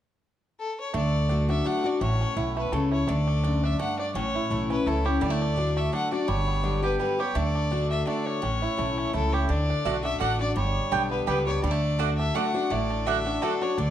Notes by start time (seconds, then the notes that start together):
0.59 A4
0.80 C#5
0.94 D2 D3 A3 D5
1.29 D3 A3 D4 F#4
1.49 D4 F#4 E5
1.65 D3 A3 D4 F#4 F#5
1.84 D4 F#4 D5
2.01 A1 A2 A3 C#5
2.21 C#4
2.36 B1 B2 E4
2.57 A3 B4
2.72 C#2 C#3 C#4 A4
2.92 E4 C#5
3.07 D2 D3 A3 D5
3.27 D4
3.44 F#2 D4
3.63 D4 E5
3.79 G2 A3 F#5
3.99 D4 D5
4.15 A1 A2 C#4 C#5
4.35 E4
4.50 B1 E3 A3 C#4 E4
4.70 C#4 E4 B4
4.86 C#2 E3 A3 C#4 E4 A4
5.05 C#4 E4 G4 C#5
5.21 D2 D3 G3 D5
5.30 A3
5.42 D4
5.56 D3 A3 D4 F#4
5.77 A3 E5
5.92 D3 A3 D4 F#4 F#5
6.12 D4 F#4 D5
6.28 G1 G2 G3 C#5
6.47 B3
6.63 D3 G3 B3 D4 G4
6.82 B3 G4 B4
7.00 D3 G3 B3 G4 B4
7.19 B3 G4 C#5
7.35 D2 D3 A3 D5
7.55 D4
7.71 D3 A3 D4 F#4
7.90 D4 E5
8.06 D3 A3 D4 F#4 D5
8.26 D4 C#5
8.42 A1 A2 C#4
8.62 E4
8.77 B1 E3 A3 C#4 E4
8.98 C#4
9.13 C#2 E3 A3 C#4 E4 A4
9.33 G4 C#5
9.49 D2 D3 D4 D5
9.70 D4
9.85 B1 D3 A3 D4 F#4 D5 F#5
10.03 D4 F#4 E5
10.20 A1 D3 A3 D4 F#4 D5 F#5
10.39 D4 F#4 D5
10.56 G1 G2 G3 C#5
10.91 B1 D3 G3 B3 D4 G4 D5 G5
11.11 B3 B4
11.27 C#2 D3 G3 B3 G4 B4 D5 G5
11.46 B3 D4 G4 C#5
11.63 D2 D3 G3 D5
11.71 A3
11.98 D3 A3 D4 F#4 D5 F#5
12.18 D4 E5
12.34 D3 A3 D4 F#4 D5 F#5
12.54 D4 F#4
12.70 A1 A2 A3 D5
12.90 D4
13.05 D3 A3 D4 F#4 D5 E5 F#5
13.25 D4 F#4
13.42 D3 A3 D4 F#4 A4 D5 F#5
13.61 D4 F#4 C#5
13.78 D2 D3 D4 D5